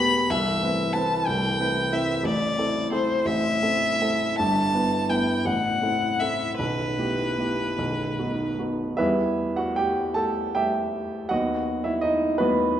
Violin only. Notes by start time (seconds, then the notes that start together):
Already playing: B5
0.30 E5
0.92 A5
1.26 G5
1.92 E5
2.24 D5
2.92 C5
3.26 E5
4.38 A5
5.09 G5
5.46 F#5
6.20 E5
6.58 B4